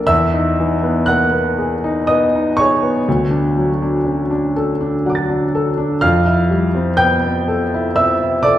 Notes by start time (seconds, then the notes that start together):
Already playing: A#3 D4 A4 D5 D6
0.07 E2 E5 E6
0.34 D#4
0.60 E3
0.83 B3
1.06 A#3 F#5 F#6
1.31 B3
1.58 G#4
1.84 D#4
2.07 B3 D#5 D#6
2.35 D#4
2.57 G#4 C#5 C#6
2.83 B3
3.08 D2
3.31 D4
3.57 F#3
3.82 D4
4.05 C#4
4.31 D4
4.56 A4
4.81 D4
5.06 F#3 F#5
5.12 D6 A6
5.29 D4
5.55 A4
5.78 D4
6.01 F2 F5 F6
6.26 E4
6.50 G3
6.75 C4
6.97 B3 G5 G6
7.24 C4
7.48 A4
7.74 E4
7.96 C4 E5 E6
8.21 E4
8.43 A4 D5 D6